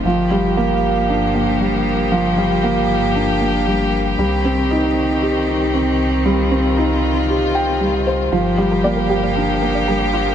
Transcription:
<<
  \new Staff \with { instrumentName = "Synth arpeggio sound" } { \time 4/4 \key g \minor \tempo 4 = 116 r1 | r1 | r1 | r1 |
f'16 r16 g'16 bes'16 d''16 bes'16 g'16 f'16 g'16 r16 bes'16 d''16 bes'16 g'16 f'16 g'16 | }
  \new Staff \with { instrumentName = "Felt piano" } { \time 4/4 \key g \minor f8 g8 bes8 r8 d'8 bes8 g8 r8 | f8 g8 bes8 r8 d'8 bes8 g8 r8 | g8 c'8 ees'8 r8 g'8 ees'8 c'8 r8 | g8 c'8 ees'8 r8 g'8 g''8 g8 c''8 |
f8 g8 bes8 r8 d'8 bes8 g8 r8 | }
  \new Staff \with { instrumentName = "String quartet" } { \time 4/4 \key g \minor << { g'1~ | g'1~ | g'1 | f'1 |
g'1 | } \\ { <f bes>1~ | <f bes>1 | <ees c'>1~ | <ees c'>1 |
<f bes>1 | } >> }
  \new Staff \with { instrumentName = "Detuned saw bass" } { \clef bass \time 4/4 \key g \minor g,,1~ | g,,1 | c,1~ | c,1 |
g,,1 | }
>>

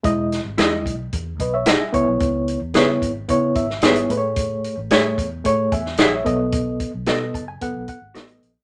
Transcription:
<<
  \new Staff \with { instrumentName = "Reed electric piano" } { \time 4/4 \key e \major \tempo 4 = 111 << { r2 r8 <b' dis''>16 <cis'' e''>16 fis''16 <e'' gis''>8 r16 | r2 r8 e''8 gis''4 | r2 r8 <e'' gis''>8 <dis'' fis''>16 <cis'' e''>8 r16 | r4. a''16 gis''16 fis''8 fis''8 dis''4 | } \\ { <gis e' dis''>8 r8 <gis e' dis''>8 r2 <b e' cis''>8~ | <b e' cis''>8 r8 <b e' cis''>8 r8 <b e' cis''>8 r8 <b e' cis''>8 <a gis' b' cis''>8~ | <a gis' b' cis''>8 r8 <a gis' cis''>8 r8 <a gis' cis''>8 r4 <b a' dis''>8~ | <b a' dis''>8 r8 <b a' dis''>8 r8 <b a'>8 r8 <b a'>8 r8 | } >> }
  \new Staff \with { instrumentName = "Clean electric guitar" } { \time 4/4 \key e \major r4 <e' gis' dis''>8 r4. <e' gis' dis''>8 r8 | r4 <gis' b' e''>8 r4. <gis' b' e''>8 r8 | r4 <gis' cis'' e''>8 r4. <gis' cis'' e''>8 r8 | r4 <fis' a' dis''>8 r4. <fis' a' dis''>8 r8 | }
  \new Staff \with { instrumentName = "Fingered electric bass" } { \clef bass \time 4/4 \key e \major e,,8. gis,,16 e,8 b,,8 e,8 b,,8. r16 cis,16 b,,16 | cis,8. e,16 cis8 gis,,8 cis8 gis,,8 gis,,8 a,8~ | a,8. a,,16 a,8 e,8 a,8 e,8 ais,,8 b,,8~ | b,,8. b,,16 b,8 fis,,8 fis,,16 b,,16 r16 gis,,16 a,,8 ais,,16 r16 | }
  \new DrumStaff \with { instrumentName = "Drums" } \drummode { \time 4/4 <hh bd>8 <hh sn>8 <hh sn>8 <hh bd>8 <hh bd>8 <hh bd>8 <hh sn>8 <hh bd>8 | <hh bd>8 hh8 <hh sn>8 <hh bd>8 <hh bd>8 <hh bd>16 sn16 <hh sn>16 hh16 hh8 | <hh bd>8 hh8 <hh sn>8 <hh bd>8 <hh bd>8 <hh bd>16 sn16 <hh sn>8 <hh bd>8 | <hh bd>8 <hh bd>8 <hh sn>8 <hh bd>8 <hh bd>8 <hh bd>8 <hh sn>16 hh16 hh8 | }
>>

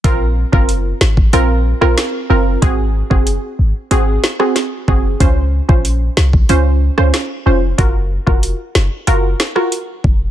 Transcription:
<<
  \new Staff \with { instrumentName = "Synth pluck" } { \time 4/4 \key bes \minor \tempo 4 = 93 <c' f' bes'>16 r8 <c' f' bes'>16 r4 <c' f' bes'>16 r8 <c' f' bes'>8. <c' f' bes'>8 | <c' ges' aes'>16 r8 <c' ges' aes'>16 r4 <c' ges' aes'>16 r8 <c' ges' aes'>16 r8 <c' ges' aes'>16 r16 | <des' f' c''>16 r8 <des' f' c''>16 r4 <des' f' c''>16 r8 <des' f' c''>16 r8 <des' f' c''>16 r16 | <f' ges' bes'>16 r8 <f' ges' bes'>16 r4 <f' ges' bes'>16 r8 <f' ges' bes'>16 r4 | }
  \new Staff \with { instrumentName = "808-style bass" } { \clef bass \time 4/4 \key bes \minor bes,,8. ges,,8. aes,,8 bes,,8. bes,,16 r8 ges,,8 | aes,,8. ges,,8 r16 aes,,16 r16 aes,,8 r4 ges,,8 | des,8. bes,,8. c,8 des,8. des,16 r8 f,,8 | ges,,8. f,,8 r16 ges,,16 r16 ges,,8 r4 f,,8 | }
  \new DrumStaff \with { instrumentName = "Drums" } \drummode { \time 4/4 <hh bd>8. bd16 hh8 sn16 bd16 hh8. ss16 <hh sn>4 | <hh bd>8. bd16 hh4 hh8 sn16 ss16 <hh sn>8 bd8 | <hh bd>8. bd16 hh8 sn16 bd16 hh8. ss16 <hh sn>4 | <hh bd>8. bd16 hh8 sn8 hh8 sn16 ss16 hh8 bd8 | }
>>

